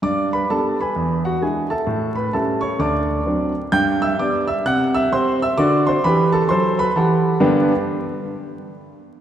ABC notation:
X:1
M:4/4
L:1/8
Q:"Swing" 1/4=130
K:G
V:1 name="Grand piano"
[dd'] [Bb] [Aa] [B_ab]2 [Ff] [^G^g] [=Ae=a]- | [Aea] [Bb] [Aa] [^c^c'] [dad']3 z | [gg'] [ee'] [dd'] [ee'] [ff'] [ee'] [cc'] [ee'] | [dd'] [cc'] [Bb] [Aa] [cc'] [Bb] [Afa]2 |
[G,,D,B,DGBg] z6 z |]
V:2 name="Grand piano" clef=bass
G,,2 [G,B,D]2 E,,2 [^G,DE]2 | A,,2 [G,^CE]2 D,,2 [F,=CD]2 | G,,2 [G,B,D]2 C,2 [G,C]2 | [D,F]2 [E,G]2 [F,A]2 [E,G]2 |
z8 |]